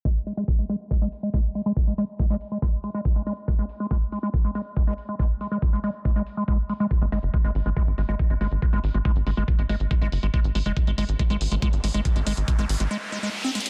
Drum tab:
HH |----o-------o-------o-------o---|----o-------o-------o-------o---|----o-------o-------o-------o---|----o-------o-------o-------o---|
BD |o-------o-------o-------o-------|o-------o-------o-------o-------|o-------o-------o-------o-------|o-------o-------o-------o-------|

HH |x-x-o-x-x-x-o-x-x-x-o-x-x-x-o-x-|x-x-o-x-x-x-o-x-x-x-o-x-x-x-o-x-|x-x-o-x-x-x-o-x-x-x-o-x-x-x-o-x-|x-x-o-x-x-x-o-x-------------xxx-|
BD |o-------o-------o-------o-------|o-------o-------o-------o-------|o-------o-------o-------o-------|o-------o-----------------------|